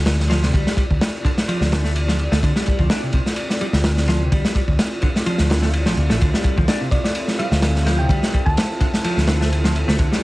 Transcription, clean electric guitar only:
0.30 F3
0.43 C3
0.54 G3
0.77 G3
1.25 D3
1.48 F3
1.72 D3
1.84 A3
2.08 F3
2.32 A3
2.43 D3
2.56 G3
2.79 F3
2.90 D4
3.03 C3
3.14 C3
3.61 G3
4.08 F3
4.21 C3
4.32 G3
4.55 G3
5.03 D3
5.26 F3
5.50 D3
5.62 A3
5.86 F3
6.10 A3
6.21 D3
6.33 G3
6.57 F3
6.68 D4
6.81 C3
6.92 C3
7.39 G3
7.86 F3
7.99 C3
8.10 G3
8.33 G3
8.80 D3
9.04 F3
9.28 D3
9.41 A3
9.64 F3
9.88 A3
9.99 D3
10.12 G3

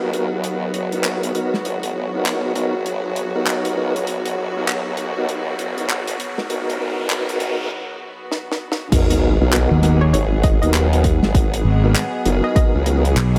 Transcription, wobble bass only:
Already playing: D#2
0.32 D#2
0.74 F#1
1.04 G#1
1.65 G#1
1.95 G#1
2.14 F#1
2.44 G#1
2.86 G#1
3.35 D#2
3.77 C#2
4.07 G#1
4.38 G#1
4.56 D#2
5.17 D#2
5.59 F#1
5.89 G#1
6.50 G#1
6.80 G#1
6.98 F#1
7.29 G#1
8.92 G#1
9.41 B1
10.13 G#1
10.63 D#2
11.23 G#1
12.26 F#1
12.75 C#2

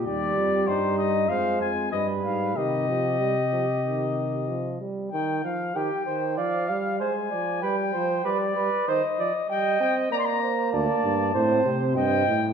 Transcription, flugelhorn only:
0.07 G4
0.68 D#4
1.29 C5
1.92 B4
2.56 G4
5.75 G4
6.06 C5
6.37 D5
6.68 F5
7.00 C5
7.31 D5
7.62 B4
7.93 C5
8.24 B4
8.56 B4
8.88 C5
9.19 D5
9.50 D#5
10.12 D5
10.43 C5
10.73 D5
11.35 C5
11.96 D#5

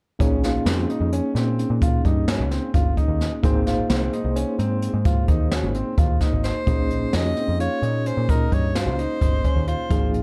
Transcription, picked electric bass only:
0.20 A#1
0.66 F2
1.00 F2
1.35 A#2
1.70 A#2
2.05 G2
2.39 C#2
2.74 G1
3.08 D#2
3.43 G#1
3.90 C2
4.24 C2
4.59 G#2
4.94 G#2
5.28 D#2
5.63 G#1
5.98 D#2
6.33 G#1
6.67 A#1
7.14 F2
7.48 F2
7.82 A#2
8.17 A#2
8.52 G2
8.86 C#2
9.21 G1
9.56 D#2
9.91 G#1

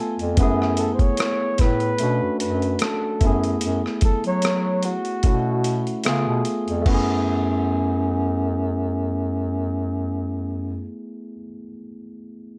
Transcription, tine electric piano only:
Already playing: A3 B3 F4 G#5
0.36 G#3 B3
0.40 A3 E4 G#4
2.00 A3 C#4 D4 F#4
3.20 A3 B3
3.25 E4 G#4
5.24 A3 C#4 E4 F#4
6.05 A3 B3 F4 G#4
6.82 A3
6.86 B3
6.90 E4
6.94 G#4

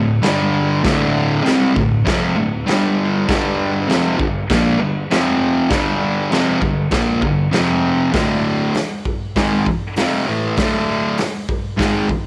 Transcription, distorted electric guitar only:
Already playing: D2 A2
0.22 G2 D3 G3
0.83 D2 A2 D3
1.44 C3 G3 C4
1.74 D2 A2
2.05 F2 C3 F3
2.36 D2 A2
2.66 G2 D3 G3
3.28 G2 D3 G3
3.88 F2 C3 F3
4.18 G2 D3
4.50 A#2 F3 A#3
4.79 G2 D3
5.10 F2 C3 F3
5.70 G2 D3 G3
6.31 F2 C3 F3
6.61 G2 D3
6.91 A#2 F3 A#3
7.22 G2 D3
7.51 F2 C3 F3
8.13 D2 A2 D3
9.36 G#2 D#3 G#3
9.66 muted distorted electric guitar stroke
9.97 F2 C3 F3
10.27 A2 E3 A3
10.58 D2 A2 D3
11.78 G#2 D#3 G#3
12.10 muted distorted electric guitar stroke

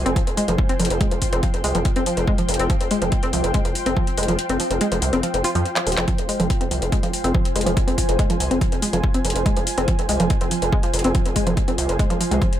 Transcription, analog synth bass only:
0.06 F1
0.27 F1
0.48 F1
0.80 F1
0.90 F1
1.12 F1
1.33 F1
1.54 F1
1.64 C2
1.75 F1
1.96 F1
2.17 F1
2.49 F1
2.59 F1
2.81 F1
3.02 F1
3.23 F1
3.33 C2
3.44 F1
3.65 F1
3.86 F1
4.18 F1
4.28 F1
4.50 F1
4.71 F1
4.92 F1
5.02 C2
5.13 F1
5.34 F1
5.55 F2
5.87 D#1
5.98 F1
6.19 F1
6.40 F1
6.61 F1
6.71 C2
6.82 F1
7.03 F1
7.24 F1
7.56 F1
7.67 F1
7.88 F1
8.09 F1
8.30 F1
8.40 C2
8.51 F1
8.72 F1
8.93 F1
9.25 F1
9.35 F1
9.57 F1
9.78 F1
9.99 F1
10.09 C2
10.20 F1
10.41 F1
10.62 F1
10.94 F1
11.05 F1
11.26 F1
11.47 F1
11.68 F1
11.78 C2
11.89 F1
12.10 F1
12.31 C2

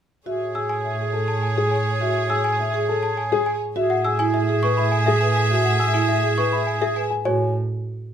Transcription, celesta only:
0.55 E6
0.69 G#5
1.28 A5
1.42 G#5
1.72 G#5
2.30 E6
2.44 G#5
3.03 A5
3.17 G#5
3.46 G#5
3.90 F#5
4.05 E6
4.19 G#5
4.34 E5
4.63 C#6
4.77 B5
4.92 G#5
5.06 E5
5.21 G#5
5.65 F#5
5.79 E6
5.94 G#5
6.09 E5
6.38 C#6
6.53 B5
6.67 G#5
6.82 E5
6.96 G#5
7.25 G#5

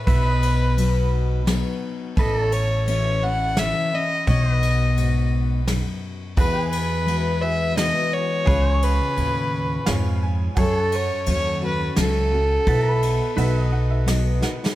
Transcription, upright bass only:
0.07 B1
2.17 A1
4.27 B1
6.37 E2
8.47 C#2
9.17 D#2
9.87 F2
10.57 F#2
11.27 D#2
11.97 C#2
12.67 B1
13.37 B1

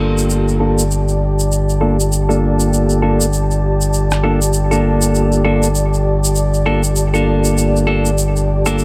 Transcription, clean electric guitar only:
Already playing: A#3 D4 F4 A4
0.60 A#3 D4 F4 A4
1.81 A#3 D4 F4 A4
2.29 A#3 D4 F4 A4
3.02 A#3 D4 F4 A4
4.24 A#3 D4 F4 A4
4.71 A#3 D4 F4 A4
5.45 A#3 D4 F4 A4
6.66 A#3 D4 F4 A4
7.14 A#3 D4 F4 A4
7.87 A#3 D4 F4 A4
8.66 A#3 D4 F4 A4

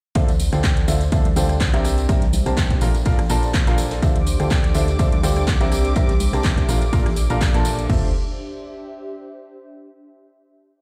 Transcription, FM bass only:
0.15 D2
0.53 D2
0.88 D2
1.12 D2
1.36 D2
1.74 C2
2.09 C2
2.46 C2
2.81 A#1
3.06 A#1
3.30 A#1
3.67 A#1
4.02 D2
4.40 D2
4.75 D2
4.99 D2
5.23 D2
5.61 C2
5.96 C2
6.33 C2
6.68 A#1
6.93 A#1
7.30 A#1
7.54 A#1
7.90 D2

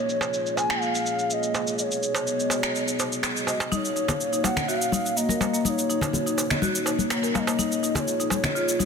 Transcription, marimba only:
3.72 D#4
3.96 D#4
4.33 D#4
4.57 D#5
4.68 F#4
4.93 D#4
5.17 A#3
5.29 A#4
5.41 A#3
5.54 A#3
5.65 D#4
5.89 D#4
6.26 D#4
6.50 D#5
6.62 F#4
6.86 D#4
7.10 A#3
7.23 A#4
7.34 A#3
7.47 A#3
7.59 D#4
7.83 D#4
8.20 D#4
8.44 D#5
8.55 F4
8.79 D#4

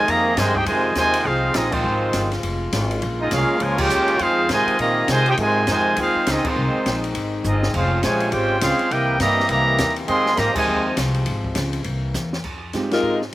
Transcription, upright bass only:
0.08 F2
0.37 G2
0.66 F2
0.96 D#2
1.25 C2
1.54 A#1
1.84 G#1
2.14 G1
2.43 F1
2.73 G#1
3.02 A#1
3.31 C2
3.61 C#2
3.89 D#2
4.20 F2
4.49 G#2
4.67 muted upright bass stroke
4.79 A#2
5.08 C3
5.38 G#2
5.67 F2
5.97 D#2
6.15 muted upright bass stroke
6.27 C#2
6.56 C2
6.74 muted upright bass stroke
6.86 A#1
7.15 G#1
7.44 G1
7.74 F1
8.03 A#1
8.32 G#1
8.61 C#2
8.79 muted upright bass stroke
8.91 C2
9.20 G2
9.49 C2
9.79 D#2
10.08 F2
10.38 G#2
10.55 muted upright bass stroke
10.68 D#2
10.97 C2
11.26 G#1
11.56 C#2
11.85 C2
12.14 E2
12.44 F2
12.74 G2
13.02 G#2

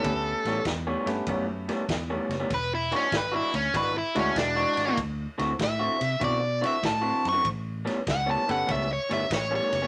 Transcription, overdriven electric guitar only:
Already playing: A4
2.54 B4
2.75 E4
2.96 C#4
3.17 B4
3.36 E4
3.55 C#4
3.76 B4
3.98 E4
4.19 C#4
4.39 D4
5.64 E5
6.24 D5
6.66 E5
6.86 A5
7.29 C#6
8.11 F#5
8.31 A5
8.51 F#5
8.71 E5
8.93 C#5
9.13 E5
9.34 C#5
9.56 C#5

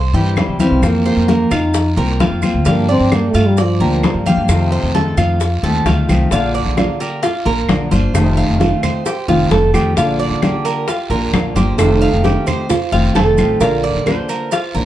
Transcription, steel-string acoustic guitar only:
0.14 E3 G3 C4 E4
0.36 E3 G3 C4 E4
0.60 E3 G3 C4 E4
0.82 F3 A#3 C4 F4
1.28 F3 A#3 C4 F4
1.75 muted steel-string acoustic guitar stroke
1.97 A#3 C4 F4
2.20 F3 A#3 C4 F4
2.43 A#3 C4 F4
2.66 D3 F3 A#3 D4 G4
3.12 F3 A#3 D4 G4
3.58 muted steel-string acoustic guitar stroke
3.81 F3 A#3 D4 G4
4.04 F3 A#3 D4 G4
4.27 F3 A#3 D4 G4
4.49 C3 D#3 A3 C4 F4
4.94 D#3 A3 C4 F4
5.41 muted steel-string acoustic guitar stroke
5.63 D#3 A3 C4 F4
5.87 D#3 A3 C4 F4
6.09 D#3 A3 C4 F4
6.32 D3 A#3 D4 F4
6.77 D3 A#3 D4 F4
7.23 muted steel-string acoustic guitar stroke
7.45 A#3 D4 F4
7.69 D3 A#3 D4 F4
7.91 A#3 D4 F4
8.14 C3 D#3 A3 C4 F4
8.60 D#3 A3 C4 F4
9.06 muted steel-string acoustic guitar stroke
9.28 D#3 A3 C4 F4
9.51 D#3 A3 C4 F4
9.74 D#3 A3 C4 F4
9.97 D3 A#3 D4 F4
10.43 D3 A#3 D4 F4
10.88 muted steel-string acoustic guitar stroke
11.11 A#3 D4 F4
11.33 D3 A#3 D4 F4
11.56 A#3 D4 F4
11.79 C3 D#3 A3 C4 F4
12.24 D#3 A3 C4 F4
12.71 muted steel-string acoustic guitar stroke
12.93 D#3 A3 C4 F4
13.15 D#3 A3 C4 F4
13.38 D#3 A3 C4 F4
13.62 D3 A#3 D4 F4
14.07 D3 A#3 D4 F4
14.52 muted steel-string acoustic guitar stroke
14.75 A#3 D4 F4

